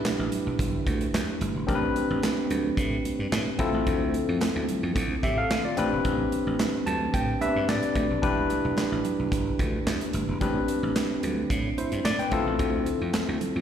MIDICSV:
0, 0, Header, 1, 4, 480
1, 0, Start_track
1, 0, Tempo, 545455
1, 1483, Time_signature, 4, 2, 24, 8
1, 11978, End_track
2, 0, Start_track
2, 0, Title_t, "Tine electric piano"
2, 0, Program_c, 0, 4
2, 0, Note_on_c, 0, 62, 60
2, 0, Note_on_c, 0, 64, 64
2, 0, Note_on_c, 0, 67, 66
2, 0, Note_on_c, 0, 71, 72
2, 1440, Note_off_c, 0, 62, 0
2, 1442, Note_off_c, 0, 64, 0
2, 1445, Note_off_c, 0, 67, 0
2, 1447, Note_off_c, 0, 71, 0
2, 1469, Note_on_c, 0, 60, 68
2, 1473, Note_on_c, 0, 62, 57
2, 1479, Note_on_c, 0, 67, 59
2, 1483, Note_on_c, 0, 70, 59
2, 1542, Note_on_c, 0, 71, 78
2, 1544, Note_off_c, 0, 70, 0
2, 3122, Note_off_c, 0, 60, 0
2, 3125, Note_off_c, 0, 62, 0
2, 3127, Note_off_c, 0, 67, 0
2, 3155, Note_on_c, 0, 60, 68
2, 3159, Note_off_c, 0, 71, 0
2, 3161, Note_on_c, 0, 64, 72
2, 3165, Note_on_c, 0, 65, 63
2, 3169, Note_on_c, 0, 69, 79
2, 4573, Note_off_c, 0, 64, 0
2, 4575, Note_off_c, 0, 65, 0
2, 4577, Note_off_c, 0, 69, 0
2, 4603, Note_on_c, 0, 76, 64
2, 4610, Note_on_c, 0, 67, 57
2, 4724, Note_off_c, 0, 76, 0
2, 4728, Note_off_c, 0, 67, 0
2, 4732, Note_on_c, 0, 77, 73
2, 4738, Note_on_c, 0, 69, 56
2, 4959, Note_off_c, 0, 77, 0
2, 4963, Note_off_c, 0, 69, 0
2, 4970, Note_on_c, 0, 74, 65
2, 4976, Note_on_c, 0, 65, 54
2, 5044, Note_off_c, 0, 60, 0
2, 5075, Note_on_c, 0, 60, 73
2, 5080, Note_on_c, 0, 62, 62
2, 5084, Note_on_c, 0, 67, 65
2, 5090, Note_on_c, 0, 71, 81
2, 5198, Note_off_c, 0, 74, 0
2, 5201, Note_off_c, 0, 65, 0
2, 6041, Note_on_c, 0, 81, 69
2, 6265, Note_off_c, 0, 81, 0
2, 6282, Note_on_c, 0, 79, 66
2, 6490, Note_off_c, 0, 60, 0
2, 6493, Note_off_c, 0, 62, 0
2, 6495, Note_off_c, 0, 67, 0
2, 6498, Note_off_c, 0, 71, 0
2, 6506, Note_off_c, 0, 79, 0
2, 6519, Note_on_c, 0, 59, 44
2, 6521, Note_on_c, 0, 62, 54
2, 6524, Note_on_c, 0, 67, 51
2, 6524, Note_on_c, 0, 76, 71
2, 6527, Note_on_c, 0, 71, 63
2, 6577, Note_on_c, 0, 60, 55
2, 6582, Note_off_c, 0, 59, 0
2, 6747, Note_off_c, 0, 76, 0
2, 6765, Note_on_c, 0, 74, 74
2, 7210, Note_off_c, 0, 74, 0
2, 7222, Note_off_c, 0, 62, 0
2, 7231, Note_off_c, 0, 67, 0
2, 7233, Note_on_c, 0, 62, 65
2, 7236, Note_off_c, 0, 71, 0
2, 7236, Note_on_c, 0, 64, 61
2, 7242, Note_on_c, 0, 67, 63
2, 7246, Note_on_c, 0, 71, 74
2, 7270, Note_off_c, 0, 60, 0
2, 9123, Note_off_c, 0, 62, 0
2, 9125, Note_off_c, 0, 64, 0
2, 9127, Note_off_c, 0, 67, 0
2, 9129, Note_off_c, 0, 71, 0
2, 9156, Note_on_c, 0, 60, 59
2, 9162, Note_on_c, 0, 62, 58
2, 9166, Note_on_c, 0, 67, 57
2, 9172, Note_on_c, 0, 71, 67
2, 10106, Note_off_c, 0, 67, 0
2, 10108, Note_off_c, 0, 71, 0
2, 10366, Note_on_c, 0, 72, 60
2, 10372, Note_on_c, 0, 64, 54
2, 10593, Note_off_c, 0, 72, 0
2, 10596, Note_off_c, 0, 64, 0
2, 10602, Note_on_c, 0, 74, 79
2, 10723, Note_off_c, 0, 74, 0
2, 10729, Note_on_c, 0, 79, 65
2, 10733, Note_on_c, 0, 71, 53
2, 10806, Note_off_c, 0, 60, 0
2, 10809, Note_off_c, 0, 62, 0
2, 10836, Note_on_c, 0, 60, 70
2, 10841, Note_on_c, 0, 64, 65
2, 10846, Note_on_c, 0, 65, 68
2, 10851, Note_on_c, 0, 69, 83
2, 10958, Note_off_c, 0, 79, 0
2, 10960, Note_off_c, 0, 71, 0
2, 11978, Note_off_c, 0, 60, 0
2, 11978, Note_off_c, 0, 64, 0
2, 11978, Note_off_c, 0, 65, 0
2, 11978, Note_off_c, 0, 69, 0
2, 11978, End_track
3, 0, Start_track
3, 0, Title_t, "Slap bass"
3, 0, Program_c, 1, 36
3, 167, Note_on_c, 1, 33, 88
3, 245, Note_off_c, 1, 33, 0
3, 410, Note_on_c, 1, 35, 87
3, 487, Note_off_c, 1, 35, 0
3, 521, Note_on_c, 1, 31, 93
3, 685, Note_off_c, 1, 31, 0
3, 761, Note_on_c, 1, 38, 96
3, 925, Note_off_c, 1, 38, 0
3, 1001, Note_on_c, 1, 40, 99
3, 1088, Note_off_c, 1, 40, 0
3, 1242, Note_on_c, 1, 31, 87
3, 1329, Note_off_c, 1, 31, 0
3, 1373, Note_on_c, 1, 28, 82
3, 1449, Note_off_c, 1, 28, 0
3, 1483, Note_on_c, 1, 33, 95
3, 1646, Note_off_c, 1, 33, 0
3, 1852, Note_on_c, 1, 33, 101
3, 1928, Note_off_c, 1, 33, 0
3, 2204, Note_on_c, 1, 38, 93
3, 2367, Note_off_c, 1, 38, 0
3, 2441, Note_on_c, 1, 45, 99
3, 2605, Note_off_c, 1, 45, 0
3, 2810, Note_on_c, 1, 43, 76
3, 2887, Note_off_c, 1, 43, 0
3, 2923, Note_on_c, 1, 45, 103
3, 3010, Note_off_c, 1, 45, 0
3, 3161, Note_on_c, 1, 38, 98
3, 3248, Note_off_c, 1, 38, 0
3, 3290, Note_on_c, 1, 33, 83
3, 3367, Note_off_c, 1, 33, 0
3, 3403, Note_on_c, 1, 38, 110
3, 3653, Note_off_c, 1, 38, 0
3, 3772, Note_on_c, 1, 41, 88
3, 3848, Note_off_c, 1, 41, 0
3, 4010, Note_on_c, 1, 38, 85
3, 4087, Note_off_c, 1, 38, 0
3, 4251, Note_on_c, 1, 41, 99
3, 4328, Note_off_c, 1, 41, 0
3, 4363, Note_on_c, 1, 38, 98
3, 4526, Note_off_c, 1, 38, 0
3, 4604, Note_on_c, 1, 45, 91
3, 4767, Note_off_c, 1, 45, 0
3, 4851, Note_on_c, 1, 50, 102
3, 4935, Note_off_c, 1, 50, 0
3, 5093, Note_on_c, 1, 33, 89
3, 5176, Note_off_c, 1, 33, 0
3, 5214, Note_on_c, 1, 28, 81
3, 5290, Note_off_c, 1, 28, 0
3, 5325, Note_on_c, 1, 33, 103
3, 5488, Note_off_c, 1, 33, 0
3, 5692, Note_on_c, 1, 33, 91
3, 5768, Note_off_c, 1, 33, 0
3, 6046, Note_on_c, 1, 38, 91
3, 6208, Note_off_c, 1, 38, 0
3, 6281, Note_on_c, 1, 45, 96
3, 6445, Note_off_c, 1, 45, 0
3, 6650, Note_on_c, 1, 43, 84
3, 6727, Note_off_c, 1, 43, 0
3, 6764, Note_on_c, 1, 45, 94
3, 6851, Note_off_c, 1, 45, 0
3, 7001, Note_on_c, 1, 38, 84
3, 7088, Note_off_c, 1, 38, 0
3, 7132, Note_on_c, 1, 35, 77
3, 7208, Note_off_c, 1, 35, 0
3, 7242, Note_on_c, 1, 28, 106
3, 7493, Note_off_c, 1, 28, 0
3, 7609, Note_on_c, 1, 35, 91
3, 7686, Note_off_c, 1, 35, 0
3, 7848, Note_on_c, 1, 33, 88
3, 7926, Note_off_c, 1, 33, 0
3, 8091, Note_on_c, 1, 35, 85
3, 8168, Note_off_c, 1, 35, 0
3, 8199, Note_on_c, 1, 31, 98
3, 8364, Note_off_c, 1, 31, 0
3, 8442, Note_on_c, 1, 38, 91
3, 8606, Note_off_c, 1, 38, 0
3, 8681, Note_on_c, 1, 40, 93
3, 8769, Note_off_c, 1, 40, 0
3, 8922, Note_on_c, 1, 31, 93
3, 9009, Note_off_c, 1, 31, 0
3, 9048, Note_on_c, 1, 28, 87
3, 9126, Note_off_c, 1, 28, 0
3, 9163, Note_on_c, 1, 33, 109
3, 9326, Note_off_c, 1, 33, 0
3, 9530, Note_on_c, 1, 33, 104
3, 9607, Note_off_c, 1, 33, 0
3, 9885, Note_on_c, 1, 38, 87
3, 10048, Note_off_c, 1, 38, 0
3, 10120, Note_on_c, 1, 45, 94
3, 10285, Note_off_c, 1, 45, 0
3, 10488, Note_on_c, 1, 43, 81
3, 10566, Note_off_c, 1, 43, 0
3, 10602, Note_on_c, 1, 45, 101
3, 10689, Note_off_c, 1, 45, 0
3, 10840, Note_on_c, 1, 38, 99
3, 10928, Note_off_c, 1, 38, 0
3, 10971, Note_on_c, 1, 33, 80
3, 11047, Note_off_c, 1, 33, 0
3, 11081, Note_on_c, 1, 38, 113
3, 11332, Note_off_c, 1, 38, 0
3, 11452, Note_on_c, 1, 41, 80
3, 11528, Note_off_c, 1, 41, 0
3, 11691, Note_on_c, 1, 38, 87
3, 11767, Note_off_c, 1, 38, 0
3, 11931, Note_on_c, 1, 41, 83
3, 11978, Note_off_c, 1, 41, 0
3, 11978, End_track
4, 0, Start_track
4, 0, Title_t, "Drums"
4, 43, Note_on_c, 9, 63, 60
4, 45, Note_on_c, 9, 38, 109
4, 45, Note_on_c, 9, 42, 100
4, 49, Note_on_c, 9, 39, 91
4, 131, Note_off_c, 9, 63, 0
4, 133, Note_off_c, 9, 38, 0
4, 133, Note_off_c, 9, 42, 0
4, 137, Note_off_c, 9, 39, 0
4, 282, Note_on_c, 9, 42, 61
4, 283, Note_on_c, 9, 64, 66
4, 370, Note_off_c, 9, 42, 0
4, 371, Note_off_c, 9, 64, 0
4, 521, Note_on_c, 9, 36, 103
4, 525, Note_on_c, 9, 62, 35
4, 528, Note_on_c, 9, 42, 98
4, 609, Note_off_c, 9, 36, 0
4, 613, Note_off_c, 9, 62, 0
4, 616, Note_off_c, 9, 42, 0
4, 762, Note_on_c, 9, 36, 89
4, 764, Note_on_c, 9, 62, 53
4, 769, Note_on_c, 9, 42, 62
4, 850, Note_off_c, 9, 36, 0
4, 852, Note_off_c, 9, 62, 0
4, 857, Note_off_c, 9, 42, 0
4, 888, Note_on_c, 9, 42, 51
4, 976, Note_off_c, 9, 42, 0
4, 1003, Note_on_c, 9, 63, 61
4, 1006, Note_on_c, 9, 42, 102
4, 1008, Note_on_c, 9, 38, 116
4, 1011, Note_on_c, 9, 39, 92
4, 1091, Note_off_c, 9, 63, 0
4, 1094, Note_off_c, 9, 42, 0
4, 1096, Note_off_c, 9, 38, 0
4, 1099, Note_off_c, 9, 39, 0
4, 1240, Note_on_c, 9, 63, 61
4, 1241, Note_on_c, 9, 42, 73
4, 1328, Note_off_c, 9, 63, 0
4, 1329, Note_off_c, 9, 42, 0
4, 1374, Note_on_c, 9, 63, 52
4, 1462, Note_off_c, 9, 63, 0
4, 1483, Note_on_c, 9, 36, 93
4, 1484, Note_on_c, 9, 42, 67
4, 1490, Note_on_c, 9, 62, 57
4, 1571, Note_off_c, 9, 36, 0
4, 1572, Note_off_c, 9, 42, 0
4, 1578, Note_off_c, 9, 62, 0
4, 1724, Note_on_c, 9, 62, 49
4, 1725, Note_on_c, 9, 42, 57
4, 1812, Note_off_c, 9, 62, 0
4, 1813, Note_off_c, 9, 42, 0
4, 1960, Note_on_c, 9, 63, 68
4, 1968, Note_on_c, 9, 38, 106
4, 1968, Note_on_c, 9, 42, 99
4, 1972, Note_on_c, 9, 39, 89
4, 2048, Note_off_c, 9, 63, 0
4, 2056, Note_off_c, 9, 38, 0
4, 2056, Note_off_c, 9, 42, 0
4, 2060, Note_off_c, 9, 39, 0
4, 2204, Note_on_c, 9, 42, 60
4, 2207, Note_on_c, 9, 64, 60
4, 2292, Note_off_c, 9, 42, 0
4, 2295, Note_off_c, 9, 64, 0
4, 2441, Note_on_c, 9, 36, 102
4, 2444, Note_on_c, 9, 62, 34
4, 2446, Note_on_c, 9, 42, 101
4, 2529, Note_off_c, 9, 36, 0
4, 2532, Note_off_c, 9, 62, 0
4, 2534, Note_off_c, 9, 42, 0
4, 2686, Note_on_c, 9, 42, 64
4, 2688, Note_on_c, 9, 62, 58
4, 2774, Note_off_c, 9, 42, 0
4, 2776, Note_off_c, 9, 62, 0
4, 2922, Note_on_c, 9, 63, 68
4, 2924, Note_on_c, 9, 42, 100
4, 2925, Note_on_c, 9, 38, 112
4, 2929, Note_on_c, 9, 39, 93
4, 3010, Note_off_c, 9, 63, 0
4, 3012, Note_off_c, 9, 42, 0
4, 3013, Note_off_c, 9, 38, 0
4, 3017, Note_off_c, 9, 39, 0
4, 3158, Note_on_c, 9, 42, 75
4, 3159, Note_on_c, 9, 63, 70
4, 3160, Note_on_c, 9, 36, 94
4, 3246, Note_off_c, 9, 42, 0
4, 3247, Note_off_c, 9, 63, 0
4, 3248, Note_off_c, 9, 36, 0
4, 3289, Note_on_c, 9, 63, 52
4, 3377, Note_off_c, 9, 63, 0
4, 3403, Note_on_c, 9, 36, 91
4, 3403, Note_on_c, 9, 42, 66
4, 3407, Note_on_c, 9, 62, 57
4, 3491, Note_off_c, 9, 36, 0
4, 3491, Note_off_c, 9, 42, 0
4, 3495, Note_off_c, 9, 62, 0
4, 3640, Note_on_c, 9, 62, 45
4, 3645, Note_on_c, 9, 42, 61
4, 3728, Note_off_c, 9, 62, 0
4, 3733, Note_off_c, 9, 42, 0
4, 3878, Note_on_c, 9, 63, 65
4, 3886, Note_on_c, 9, 38, 106
4, 3886, Note_on_c, 9, 42, 98
4, 3890, Note_on_c, 9, 39, 86
4, 3966, Note_off_c, 9, 63, 0
4, 3974, Note_off_c, 9, 38, 0
4, 3974, Note_off_c, 9, 42, 0
4, 3978, Note_off_c, 9, 39, 0
4, 4124, Note_on_c, 9, 42, 59
4, 4124, Note_on_c, 9, 64, 58
4, 4212, Note_off_c, 9, 42, 0
4, 4212, Note_off_c, 9, 64, 0
4, 4360, Note_on_c, 9, 62, 37
4, 4362, Note_on_c, 9, 36, 97
4, 4366, Note_on_c, 9, 42, 100
4, 4448, Note_off_c, 9, 62, 0
4, 4450, Note_off_c, 9, 36, 0
4, 4454, Note_off_c, 9, 42, 0
4, 4604, Note_on_c, 9, 36, 81
4, 4605, Note_on_c, 9, 62, 57
4, 4609, Note_on_c, 9, 42, 70
4, 4692, Note_off_c, 9, 36, 0
4, 4693, Note_off_c, 9, 62, 0
4, 4697, Note_off_c, 9, 42, 0
4, 4845, Note_on_c, 9, 42, 105
4, 4847, Note_on_c, 9, 38, 113
4, 4847, Note_on_c, 9, 63, 72
4, 4851, Note_on_c, 9, 39, 91
4, 4933, Note_off_c, 9, 42, 0
4, 4935, Note_off_c, 9, 38, 0
4, 4935, Note_off_c, 9, 63, 0
4, 4939, Note_off_c, 9, 39, 0
4, 5079, Note_on_c, 9, 42, 76
4, 5083, Note_on_c, 9, 63, 67
4, 5167, Note_off_c, 9, 42, 0
4, 5171, Note_off_c, 9, 63, 0
4, 5211, Note_on_c, 9, 63, 54
4, 5299, Note_off_c, 9, 63, 0
4, 5322, Note_on_c, 9, 42, 75
4, 5323, Note_on_c, 9, 36, 98
4, 5329, Note_on_c, 9, 62, 57
4, 5410, Note_off_c, 9, 42, 0
4, 5411, Note_off_c, 9, 36, 0
4, 5417, Note_off_c, 9, 62, 0
4, 5564, Note_on_c, 9, 42, 62
4, 5564, Note_on_c, 9, 62, 47
4, 5652, Note_off_c, 9, 42, 0
4, 5652, Note_off_c, 9, 62, 0
4, 5801, Note_on_c, 9, 63, 60
4, 5805, Note_on_c, 9, 38, 105
4, 5805, Note_on_c, 9, 42, 102
4, 5809, Note_on_c, 9, 39, 86
4, 5889, Note_off_c, 9, 63, 0
4, 5893, Note_off_c, 9, 38, 0
4, 5893, Note_off_c, 9, 42, 0
4, 5897, Note_off_c, 9, 39, 0
4, 6043, Note_on_c, 9, 42, 61
4, 6045, Note_on_c, 9, 64, 60
4, 6131, Note_off_c, 9, 42, 0
4, 6133, Note_off_c, 9, 64, 0
4, 6281, Note_on_c, 9, 36, 106
4, 6282, Note_on_c, 9, 62, 36
4, 6285, Note_on_c, 9, 42, 87
4, 6369, Note_off_c, 9, 36, 0
4, 6370, Note_off_c, 9, 62, 0
4, 6373, Note_off_c, 9, 42, 0
4, 6523, Note_on_c, 9, 62, 53
4, 6527, Note_on_c, 9, 42, 60
4, 6611, Note_off_c, 9, 62, 0
4, 6615, Note_off_c, 9, 42, 0
4, 6757, Note_on_c, 9, 63, 66
4, 6765, Note_on_c, 9, 42, 102
4, 6766, Note_on_c, 9, 38, 115
4, 6770, Note_on_c, 9, 39, 85
4, 6845, Note_off_c, 9, 63, 0
4, 6853, Note_off_c, 9, 42, 0
4, 6854, Note_off_c, 9, 38, 0
4, 6858, Note_off_c, 9, 39, 0
4, 6889, Note_on_c, 9, 42, 53
4, 6977, Note_off_c, 9, 42, 0
4, 6999, Note_on_c, 9, 63, 66
4, 7000, Note_on_c, 9, 36, 86
4, 7000, Note_on_c, 9, 42, 77
4, 7087, Note_off_c, 9, 63, 0
4, 7088, Note_off_c, 9, 36, 0
4, 7088, Note_off_c, 9, 42, 0
4, 7128, Note_on_c, 9, 63, 55
4, 7216, Note_off_c, 9, 63, 0
4, 7243, Note_on_c, 9, 36, 96
4, 7243, Note_on_c, 9, 42, 67
4, 7244, Note_on_c, 9, 62, 59
4, 7331, Note_off_c, 9, 36, 0
4, 7331, Note_off_c, 9, 42, 0
4, 7332, Note_off_c, 9, 62, 0
4, 7477, Note_on_c, 9, 62, 51
4, 7481, Note_on_c, 9, 42, 62
4, 7565, Note_off_c, 9, 62, 0
4, 7569, Note_off_c, 9, 42, 0
4, 7715, Note_on_c, 9, 63, 69
4, 7724, Note_on_c, 9, 38, 114
4, 7724, Note_on_c, 9, 42, 94
4, 7728, Note_on_c, 9, 39, 83
4, 7803, Note_off_c, 9, 63, 0
4, 7812, Note_off_c, 9, 38, 0
4, 7812, Note_off_c, 9, 42, 0
4, 7816, Note_off_c, 9, 39, 0
4, 7961, Note_on_c, 9, 42, 57
4, 7966, Note_on_c, 9, 64, 63
4, 8049, Note_off_c, 9, 42, 0
4, 8054, Note_off_c, 9, 64, 0
4, 8200, Note_on_c, 9, 36, 111
4, 8205, Note_on_c, 9, 62, 32
4, 8206, Note_on_c, 9, 42, 96
4, 8288, Note_off_c, 9, 36, 0
4, 8293, Note_off_c, 9, 62, 0
4, 8294, Note_off_c, 9, 42, 0
4, 8442, Note_on_c, 9, 36, 83
4, 8443, Note_on_c, 9, 62, 56
4, 8448, Note_on_c, 9, 42, 72
4, 8530, Note_off_c, 9, 36, 0
4, 8531, Note_off_c, 9, 62, 0
4, 8536, Note_off_c, 9, 42, 0
4, 8684, Note_on_c, 9, 42, 97
4, 8684, Note_on_c, 9, 63, 64
4, 8686, Note_on_c, 9, 38, 118
4, 8689, Note_on_c, 9, 39, 89
4, 8772, Note_off_c, 9, 42, 0
4, 8772, Note_off_c, 9, 63, 0
4, 8774, Note_off_c, 9, 38, 0
4, 8777, Note_off_c, 9, 39, 0
4, 8810, Note_on_c, 9, 42, 52
4, 8898, Note_off_c, 9, 42, 0
4, 8918, Note_on_c, 9, 42, 79
4, 8925, Note_on_c, 9, 63, 67
4, 9006, Note_off_c, 9, 42, 0
4, 9013, Note_off_c, 9, 63, 0
4, 9055, Note_on_c, 9, 63, 54
4, 9143, Note_off_c, 9, 63, 0
4, 9162, Note_on_c, 9, 42, 75
4, 9163, Note_on_c, 9, 36, 89
4, 9170, Note_on_c, 9, 62, 59
4, 9250, Note_off_c, 9, 42, 0
4, 9251, Note_off_c, 9, 36, 0
4, 9258, Note_off_c, 9, 62, 0
4, 9401, Note_on_c, 9, 42, 67
4, 9402, Note_on_c, 9, 62, 49
4, 9489, Note_off_c, 9, 42, 0
4, 9490, Note_off_c, 9, 62, 0
4, 9641, Note_on_c, 9, 63, 67
4, 9645, Note_on_c, 9, 38, 100
4, 9645, Note_on_c, 9, 42, 98
4, 9649, Note_on_c, 9, 39, 82
4, 9729, Note_off_c, 9, 63, 0
4, 9733, Note_off_c, 9, 38, 0
4, 9733, Note_off_c, 9, 42, 0
4, 9737, Note_off_c, 9, 39, 0
4, 9883, Note_on_c, 9, 42, 61
4, 9888, Note_on_c, 9, 64, 56
4, 9971, Note_off_c, 9, 42, 0
4, 9976, Note_off_c, 9, 64, 0
4, 10121, Note_on_c, 9, 36, 94
4, 10123, Note_on_c, 9, 62, 34
4, 10126, Note_on_c, 9, 42, 97
4, 10209, Note_off_c, 9, 36, 0
4, 10211, Note_off_c, 9, 62, 0
4, 10214, Note_off_c, 9, 42, 0
4, 10364, Note_on_c, 9, 62, 55
4, 10367, Note_on_c, 9, 42, 60
4, 10452, Note_off_c, 9, 62, 0
4, 10455, Note_off_c, 9, 42, 0
4, 10488, Note_on_c, 9, 42, 53
4, 10576, Note_off_c, 9, 42, 0
4, 10599, Note_on_c, 9, 63, 64
4, 10605, Note_on_c, 9, 42, 107
4, 10607, Note_on_c, 9, 38, 120
4, 10610, Note_on_c, 9, 39, 91
4, 10687, Note_off_c, 9, 63, 0
4, 10693, Note_off_c, 9, 42, 0
4, 10695, Note_off_c, 9, 38, 0
4, 10698, Note_off_c, 9, 39, 0
4, 10730, Note_on_c, 9, 42, 52
4, 10818, Note_off_c, 9, 42, 0
4, 10838, Note_on_c, 9, 42, 79
4, 10840, Note_on_c, 9, 36, 83
4, 10841, Note_on_c, 9, 63, 68
4, 10926, Note_off_c, 9, 42, 0
4, 10928, Note_off_c, 9, 36, 0
4, 10929, Note_off_c, 9, 63, 0
4, 10971, Note_on_c, 9, 63, 57
4, 11059, Note_off_c, 9, 63, 0
4, 11082, Note_on_c, 9, 36, 99
4, 11082, Note_on_c, 9, 42, 76
4, 11087, Note_on_c, 9, 62, 61
4, 11170, Note_off_c, 9, 36, 0
4, 11170, Note_off_c, 9, 42, 0
4, 11175, Note_off_c, 9, 62, 0
4, 11320, Note_on_c, 9, 42, 62
4, 11320, Note_on_c, 9, 62, 50
4, 11408, Note_off_c, 9, 42, 0
4, 11408, Note_off_c, 9, 62, 0
4, 11557, Note_on_c, 9, 63, 69
4, 11562, Note_on_c, 9, 38, 104
4, 11562, Note_on_c, 9, 42, 98
4, 11566, Note_on_c, 9, 39, 87
4, 11645, Note_off_c, 9, 63, 0
4, 11650, Note_off_c, 9, 38, 0
4, 11650, Note_off_c, 9, 42, 0
4, 11654, Note_off_c, 9, 39, 0
4, 11801, Note_on_c, 9, 42, 58
4, 11802, Note_on_c, 9, 64, 61
4, 11889, Note_off_c, 9, 42, 0
4, 11890, Note_off_c, 9, 64, 0
4, 11978, End_track
0, 0, End_of_file